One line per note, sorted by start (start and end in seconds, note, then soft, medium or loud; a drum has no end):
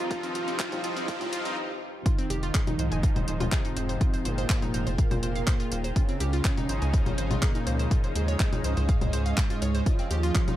0.00 2.02 C2 medium
0.00 2.02 C3 medium
0.00 2.02 D#3 medium
0.00 2.02 G3 medium
0.00 1.57 C4 medium
0.00 1.57 G4 medium
0.00 1.57 C5 medium
0.00 riser medium
0.11 0.33 G2 medium
0.11 0.33 F3 medium
0.11 0.33 F3 loud
0.11 0.33 D#4 loud
0.11 0.33 F4 loud
0.11 0.19 F4 medium
0.11 kick loud
0.11 closed hi-hat medium
0.23 0.33 C4 loud
0.23 closed hi-hat soft
0.35 0.58 G2 medium
0.35 0.58 F3 medium
0.35 0.58 F3 loud
0.35 0.58 D#4 loud
0.35 0.58 F4 loud
0.35 0.43 F4 medium
0.35 closed hi-hat loud
0.48 0.58 C4 loud
0.48 closed hi-hat soft
0.59 0.82 G2 loud
0.59 0.82 F3 medium
0.59 0.82 F3 loud
0.59 0.82 D#4 loud
0.59 0.68 F4 medium
0.59 0.82 F4 loud
0.59 kick loud
0.59 clap loud
0.59 closed hi-hat medium
0.72 0.82 C4 loud
0.72 closed hi-hat soft
0.72 low conga medium
0.84 1.06 G2 loud
0.84 1.06 F3 medium
0.84 1.06 F3 loud
0.84 1.06 D#4 loud
0.84 0.92 F4 medium
0.84 1.06 F4 loud
0.84 closed hi-hat loud
0.97 1.06 C4 loud
0.97 closed hi-hat soft
1.08 1.31 G2 medium
1.08 1.31 F3 medium
1.08 1.31 F3 loud
1.08 1.31 D#4 loud
1.08 1.31 F4 loud
1.08 1.17 F4 medium
1.08 kick loud
1.08 closed hi-hat medium
1.21 1.31 C4 loud
1.21 closed hi-hat soft
1.21 low conga medium
1.33 1.55 G2 loud
1.33 1.55 F3 medium
1.33 1.55 F3 loud
1.33 1.55 D#4 loud
1.33 1.41 F4 medium
1.33 1.55 F4 loud
1.33 closed hi-hat loud
1.45 1.55 C4 loud
1.45 closed hi-hat soft
2.06 3.52 D#3 loud
2.06 3.54 D#4 loud
2.06 10.56 D#4 medium
2.06 2.14 F4 medium
2.06 7.13 F4 medium
2.06 9.82 G#4 medium
2.06 3.99 C5 medium
2.06 10.56 F5 medium
2.06 kick loud
2.06 closed hi-hat medium
2.18 2.30 C4 loud
2.18 closed hi-hat soft
2.30 2.51 F1 loud
2.30 2.35 G4 loud
2.30 closed hi-hat loud
2.43 2.51 F4 loud
2.43 closed hi-hat soft
2.55 2.60 G#4 medium
2.55 kick loud
2.55 clap loud
2.55 closed hi-hat medium
2.67 4.59 G#2 medium
2.67 4.59 F3 medium
2.67 4.59 D#4 loud
2.67 2.72 D#4 loud
2.67 closed hi-hat soft
2.67 low conga medium
2.79 2.90 C2 medium
2.79 2.87 C5 medium
2.79 closed hi-hat loud
2.92 3.12 F1 medium
2.92 2.96 G#5 medium
2.92 closed hi-hat soft
2.99 6.60 G5 medium
3.03 3.12 F4 medium
3.03 kick loud
3.03 closed hi-hat medium
3.16 3.26 D#1 medium
3.16 3.27 C5 medium
3.16 closed hi-hat soft
3.16 low conga medium
3.28 3.49 D#1 loud
3.28 3.36 C5 medium
3.28 closed hi-hat loud
3.40 3.48 F4 loud
3.40 closed hi-hat soft
3.40 low conga medium
3.52 4.25 C3 loud
3.52 4.27 C4 loud
3.52 3.60 G#4 loud
3.52 kick loud
3.52 clap loud
3.52 closed hi-hat medium
3.65 3.69 D#4 loud
3.65 closed hi-hat soft
3.77 3.97 F1 medium
3.77 3.85 C5 medium
3.77 closed hi-hat loud
3.89 3.94 C5 medium
3.89 closed hi-hat soft
4.01 4.09 F4 medium
4.01 5.94 A#4 medium
4.01 kick loud
4.01 closed hi-hat medium
4.14 4.18 C5 medium
4.14 closed hi-hat soft
4.25 4.46 G1 medium
4.25 4.89 A#2 loud
4.25 4.89 A#3 loud
4.25 4.34 C5 medium
4.25 closed hi-hat loud
4.38 4.43 C5 loud
4.38 closed hi-hat soft
4.50 4.62 C5 loud
4.50 kick loud
4.50 clap loud
4.50 closed hi-hat medium
4.62 4.79 G#2 medium
4.62 4.79 F3 medium
4.62 4.67 D#4 loud
4.62 4.79 D#4 loud
4.62 closed hi-hat soft
4.62 low conga medium
4.74 4.85 F1 loud
4.74 4.82 C5 medium
4.74 closed hi-hat loud
4.87 5.07 F1 medium
4.87 4.91 C5 medium
4.87 closed hi-hat soft
4.98 5.87 A#2 loud
4.98 5.87 A#3 loud
4.98 5.07 F5 medium
4.98 kick loud
4.98 closed hi-hat medium
5.11 5.21 F1 medium
5.11 5.16 C5 medium
5.11 closed hi-hat soft
5.11 low conga medium
5.23 5.44 F1 medium
5.23 5.31 C5 medium
5.23 closed hi-hat loud
5.36 5.47 F5 medium
5.36 closed hi-hat soft
5.47 5.59 C5 loud
5.47 kick loud
5.47 clap loud
5.47 closed hi-hat medium
5.60 5.68 F4 loud
5.60 closed hi-hat soft
5.72 5.92 D#1 loud
5.72 5.83 C5 medium
5.72 closed hi-hat loud
5.84 5.89 C5 medium
5.84 closed hi-hat soft
5.96 7.33 C#3 loud
5.96 7.33 C#4 loud
5.96 10.56 C#4 medium
5.96 6.04 F4 medium
5.96 9.82 C#5 medium
5.96 kick loud
5.96 closed hi-hat medium
6.09 6.20 C4 loud
6.09 closed hi-hat soft
6.20 6.41 C#2 loud
6.20 6.25 G4 loud
6.20 9.86 G#4 medium
6.20 closed hi-hat loud
6.33 6.41 F4 loud
6.33 closed hi-hat soft
6.45 6.50 G#4 medium
6.45 kick loud
6.45 clap loud
6.45 closed hi-hat medium
6.57 8.50 C#3 loud
6.57 8.50 F3 medium
6.57 8.50 D#4 loud
6.57 6.62 D#4 loud
6.57 closed hi-hat soft
6.57 low conga medium
6.69 6.80 G#1 medium
6.69 6.78 C5 medium
6.69 closed hi-hat loud
6.81 7.02 C#2 loud
6.81 10.56 D#5 medium
6.81 6.86 G#5 medium
6.81 closed hi-hat soft
6.94 7.02 F4 medium
6.94 kick loud
6.94 closed hi-hat medium
7.06 7.16 G#1 medium
7.06 7.17 C5 medium
7.06 closed hi-hat soft
7.06 low conga medium
7.18 7.39 G#1 loud
7.18 7.26 C5 medium
7.18 closed hi-hat loud
7.31 7.38 F4 loud
7.31 closed hi-hat soft
7.31 low conga medium
7.42 8.06 A#2 loud
7.42 8.06 A#3 loud
7.42 7.51 G#4 loud
7.42 kick loud
7.42 clap loud
7.42 closed hi-hat medium
7.55 7.60 D#4 loud
7.55 closed hi-hat soft
7.67 7.88 C#2 medium
7.67 7.75 C5 medium
7.67 closed hi-hat loud
7.79 7.84 C5 medium
7.79 closed hi-hat soft
7.91 7.99 F4 medium
7.91 kick loud
7.91 closed hi-hat medium
8.04 8.08 C5 medium
8.04 closed hi-hat soft
8.16 8.36 D#2 medium
8.16 8.79 G#2 loud
8.16 8.79 G#3 loud
8.16 8.24 C5 medium
8.16 closed hi-hat loud
8.28 8.33 C#5 loud
8.28 closed hi-hat soft
8.40 8.52 C5 loud
8.40 kick loud
8.40 clap loud
8.40 closed hi-hat medium
8.53 8.69 C#3 loud
8.53 8.69 F3 medium
8.53 8.57 D#4 loud
8.53 8.69 D#4 loud
8.53 closed hi-hat soft
8.53 low conga medium
8.64 8.75 C#2 medium
8.64 8.73 C5 medium
8.64 closed hi-hat loud
8.77 8.98 C#2 medium
8.77 8.82 C5 medium
8.77 closed hi-hat soft
8.89 9.86 G#2 loud
8.89 9.88 G#3 loud
8.89 8.97 F5 medium
8.89 kick loud
8.89 closed hi-hat medium
9.01 9.11 C#2 medium
9.01 9.06 C5 medium
9.01 closed hi-hat soft
9.01 low conga medium
9.13 9.34 C#2 medium
9.13 9.21 C5 medium
9.13 closed hi-hat loud
9.26 9.37 F5 medium
9.26 closed hi-hat soft
9.37 9.50 C5 loud
9.37 kick loud
9.37 clap loud
9.37 closed hi-hat medium
9.50 9.58 F4 loud
9.50 closed hi-hat soft
9.62 9.83 C#2 loud
9.62 9.74 C#5 medium
9.62 closed hi-hat loud
9.75 9.79 C5 medium
9.75 closed hi-hat soft
9.86 10.56 F3 loud
9.86 10.56 D#4 medium
9.86 9.95 F4 medium
9.86 10.56 F4 loud
9.86 10.56 G4 medium
9.86 10.56 A#4 medium
9.86 kick loud
9.86 closed hi-hat medium
9.99 10.10 C4 loud
9.99 closed hi-hat soft
10.11 10.32 D#2 loud
10.11 10.16 G4 loud
10.11 closed hi-hat loud
10.23 10.31 F4 loud
10.23 closed hi-hat soft
10.34 10.40 G4 medium
10.34 10.56 A#4 medium
10.34 kick loud
10.34 clap loud
10.34 closed hi-hat medium
10.48 10.56 G2 medium
10.48 10.56 F3 medium
10.48 10.52 D#4 loud
10.48 10.56 D#4 loud
10.48 closed hi-hat soft
10.48 low conga medium